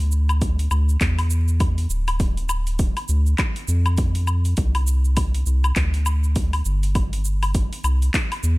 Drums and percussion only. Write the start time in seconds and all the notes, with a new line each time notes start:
0.12 shaker
0.29 low woodblock, shaker
0.42 kick, open hi-hat, shaker
0.59 open hi-hat, shaker
0.71 low woodblock, shaker
0.89 shaker
1.01 kick, clap, open hi-hat, shaker
1.19 open hi-hat, low woodblock, shaker
1.30 shaker
1.48 shaker
1.60 kick, open hi-hat, low woodblock, shaker
1.78 open hi-hat, shaker
1.90 shaker
2.08 open hi-hat, low woodblock, shaker
2.20 kick, open hi-hat, shaker
2.37 open hi-hat, shaker
2.49 low woodblock, shaker
2.67 open hi-hat, shaker
2.79 kick, open hi-hat, shaker
2.97 open hi-hat, low woodblock, shaker
3.08 shaker
3.26 shaker
3.38 kick, clap, open hi-hat, low woodblock, shaker
3.56 open hi-hat, shaker
3.68 shaker
3.86 low woodblock, shaker
3.98 kick, open hi-hat, shaker
4.15 open hi-hat, shaker
4.27 low woodblock, shaker
4.45 open hi-hat, shaker
4.57 kick, open hi-hat, shaker
4.75 open hi-hat, low woodblock, shaker
4.87 shaker
5.05 shaker
5.17 kick, open hi-hat, low woodblock, shaker
5.35 open hi-hat, shaker
5.46 shaker
5.64 low woodblock, shaker
5.76 kick, clap, open hi-hat, shaker
5.94 open hi-hat, shaker
6.06 low woodblock, shaker
6.24 shaker
6.36 kick, open hi-hat, shaker
6.53 open hi-hat, low woodblock, shaker
6.65 shaker
6.83 open hi-hat, shaker
6.95 kick, open hi-hat, low woodblock, shaker
7.13 open hi-hat, shaker
7.25 shaker
7.43 open hi-hat, low woodblock, shaker
7.55 kick, open hi-hat, shaker
7.73 open hi-hat, shaker
7.84 low woodblock, shaker
8.02 open hi-hat, shaker
8.14 kick, clap, open hi-hat, shaker
8.32 open hi-hat, low woodblock, shaker
8.43 shaker